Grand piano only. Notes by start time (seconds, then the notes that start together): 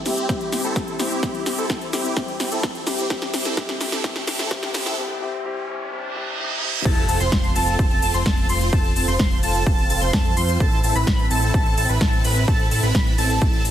Already playing: G3 C4 E4 G4
0.05 G3 C4 E4 G4
0.28 G3 C4 E4 G4
0.99 G3 C4 E4 G4
1.22 G3 C4 E4 G4
1.93 G3 C4 E4 G4
2.15 G3 C4 E4 G4
2.86 G3 C4 E4 G4
3.09 G3 C4 E4 G4
3.56 G3 C4 E4 G4
4.03 G3 C4 E4 G4
4.50 G3 C4 E4 G4
4.97 G3 C4 E4 G4
5.20 G3 C4 E4 G4
5.43 G3 C4 E4 G4
5.67 G3 C4 E4 G4
5.90 G3 C4 E4 G4
6.14 G3 C4 E4 G4
6.37 G3 C4 E4 G4
6.61 G3 C4 E4 G4